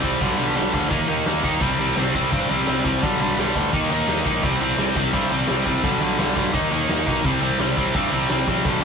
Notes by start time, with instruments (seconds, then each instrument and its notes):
0.02 picked electric bass C2, distorted electric guitar C3 G3 C4, kick
0.20 picked electric bass B1, distorted electric guitar G2 D3 G3, kick, open hi-hat
0.37 picked electric bass B1, distorted electric guitar G2 D3 G3
0.55 picked electric bass B1, distorted electric guitar G2 D3 G3, snare, open hi-hat
0.73 picked electric bass D2, distorted electric guitar G2 D3 G3, kick
0.90 picked electric bass D#2, distorted electric guitar D#3 A#3 D#4, kick, open hi-hat
1.08 picked electric bass D#2, distorted electric guitar D#3 A#3 D#4
1.26 picked electric bass D#2, distorted electric guitar D#3 A#3 D#4, snare, open hi-hat
1.43 picked electric bass D#2, distorted electric guitar D#3 A#3 D#4, kick
1.60 picked electric bass C2, distorted electric guitar C3 G3 C4, kick, open hi-hat
1.78 picked electric bass C2, distorted electric guitar C3 G3 C4
1.96 picked electric bass C2, distorted electric guitar C3 G3 C4, snare, open hi-hat
2.14 picked electric bass C2, distorted electric guitar C3 G3 C4, kick
2.32 picked electric bass G2, distorted electric guitar C3 G3 C4, kick, open hi-hat
2.50 picked electric bass C2, distorted electric guitar C3 G3 C4
2.67 picked electric bass C2, distorted electric guitar C3 G3 C4, snare, open hi-hat
2.84 picked electric bass C2, distorted electric guitar C3 G3 C4, kick
3.02 picked electric bass B1, distorted electric guitar G2 D3 G3, kick, open hi-hat
3.20 picked electric bass B1, distorted electric guitar G2 D3 G3
3.37 picked electric bass B1, distorted electric guitar G2 D3 G3, snare, open hi-hat
3.56 picked electric bass D2, distorted electric guitar G2 D3 G3, kick
3.73 picked electric bass D#2, distorted electric guitar D#3 A#3 D#4, kick, open hi-hat
3.90 picked electric bass D#2, distorted electric guitar D#3 A#3 D#4
4.08 picked electric bass D#2, distorted electric guitar D#3 A#3 D#4, snare, open hi-hat
4.25 picked electric bass A#1, distorted electric guitar D#3 A#3 D#4, kick
4.42 picked electric bass C2, distorted electric guitar C3 G3 C4, kick, open hi-hat
4.60 picked electric bass C2, distorted electric guitar C3 G3 C4
4.77 picked electric bass C2, distorted electric guitar C3 G3 C4, snare, open hi-hat
4.95 picked electric bass C2, distorted electric guitar C3 G3 C4, kick
5.13 picked electric bass G2, distorted electric guitar C3 G3 C4, kick, open hi-hat
5.30 picked electric bass C2, distorted electric guitar C3 G3 C4
5.47 picked electric bass C2, distorted electric guitar C3 G3 C4, snare, open hi-hat
5.65 picked electric bass C2, distorted electric guitar C3 G3 C4, kick
5.83 picked electric bass B1, distorted electric guitar G2 D3 G3, kick, open hi-hat
6.00 picked electric bass B1, distorted electric guitar G2 D3 G3
6.18 picked electric bass B1, distorted electric guitar G2 D3 G3, snare, open hi-hat
6.35 picked electric bass B1, distorted electric guitar G2 D3 G3, kick
6.53 picked electric bass D#2, distorted electric guitar D#3 A#3 D#4, kick, open hi-hat
6.70 picked electric bass D#2, distorted electric guitar D#3 A#3 D#4
6.89 picked electric bass D#2, distorted electric guitar D#3 A#3 D#4, snare, open hi-hat
7.06 picked electric bass B1, distorted electric guitar D#3 A#3 D#4, kick
7.24 picked electric bass C2, distorted electric guitar C3 G3 C4, kick, open hi-hat
7.41 picked electric bass C2, distorted electric guitar C3 G3 C4
7.59 picked electric bass C2, distorted electric guitar C3 G3 C4, snare, open hi-hat
7.76 picked electric bass C2, distorted electric guitar C3 G3 C4, kick
7.94 picked electric bass G2, distorted electric guitar C3 G3 C4, kick, open hi-hat
8.11 picked electric bass C2, distorted electric guitar C3 G3 C4
8.29 picked electric bass C2, distorted electric guitar C3 G3 C4, snare, open hi-hat
8.47 picked electric bass A#1, distorted electric guitar C3 G3 C4, kick
8.64 picked electric bass B1, distorted electric guitar G2 D3 G3, kick, open hi-hat
8.81 distorted electric guitar G2